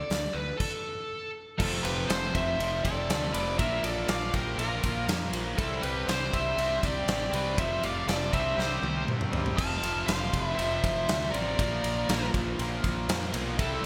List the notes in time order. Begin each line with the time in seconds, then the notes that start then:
Already playing: D5
0.10 D2, snare, open hi-hat
0.33 D2 B4
0.58 A4, kick, crash
1.58 F1 F2 C3 F3 F4 A4, kick, crash
1.84 F1 G4 B4, ride
2.09 F1 A4 C5, snare, ride
2.33 F1 C5 E5, kick, ride
2.58 F1 F2 C3 F3, ride
2.84 F1 A4 D5, kick, ride
3.08 D2, snare, ride
3.32 F1 F2 C3 F3 B4 D5, ride
3.58 A#1 A#2 F3 A#3 A#4 E5, kick, ride
3.83 A#1 A4 D5, ride
4.08 A#1 D5 F5, snare, ride
4.34 A#1 G4 A#4, kick, ride
4.57 A#1 A#2 F3 A#3 F4 A#4, ride
4.83 A#1, kick, ride
5.07 F2, snare, ride
5.32 A#1 F3 A#3, ride
5.37 A#2
5.57 C2 C3 G3 C4 E4 A4, kick, ride
5.83 C2 G4 B4, ride
6.08 C2 G4 C5, snare, ride
6.32 C2 C5 E5, kick, ride
6.57 C2 C3 G3 C4, ride
6.83 C2 G4 D5, kick, ride
7.07 A1, snare, ride
7.31 C2 C3 G3 C4 B4 D5, ride
7.57 F1 F2 C3 F3 C5 E5, kick, ride
7.82 F1 D5 F5, ride
8.07 F1 A4 D5, snare, ride
8.32 C2 C3 G3 C4 C5 E5, kick, ride
8.57 C2 G4 C5, snare
8.82 C2, high tom
9.08 G2, mid tom
9.21 mid tom
9.32 G2 C3 G3 C4, floor tom
9.46 floor tom
9.57 F1 F2 C3 F3 F5 A5, kick, crash
9.82 F1, ride
10.06 F1 C5 F5, snare, ride
10.33 F1, kick, ride
10.42 B4
10.55 F1 F2 C3 C5 E5, ride
10.60 F3
10.83 F1, kick, ride
11.08 D2, snare, ride
11.31 A1 C3 F3 A#4 D5, ride
11.36 F2
11.58 A#1 A#2 F3 A#3, kick, ride
11.83 A#1, ride
12.09 A#1, snare, ride
12.34 A#1, kick, ride
12.58 A#1 A#2 F3 A#3, ride
12.84 A#1, kick, ride
13.08 F2, snare, ride
13.32 B1 F3 A#3, ride
13.36 A#2
13.58 C2 C3 G3 C4 E4 A4, kick, ride